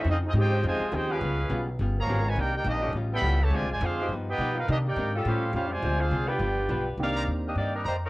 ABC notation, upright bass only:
X:1
M:4/4
L:1/8
Q:"Swing" 1/4=208
K:Cm
V:1 name="Upright bass" clef=bass
F,,2 A,,2 F,, z E,,2 | _D,,2 _C,,2 G,,,2 A,,,2 | C,,2 B,,,2 =A,,,2 ^C,,2 | (3D,, C,, A,,, F,,2 G,,2 =B,,2 |
C,2 A,,2 =A,,2 ^E,,2 | D,,2 C,,2 G,,,2 =B,,,2 | C,,2 E,,2 G,,2 F,,2 |]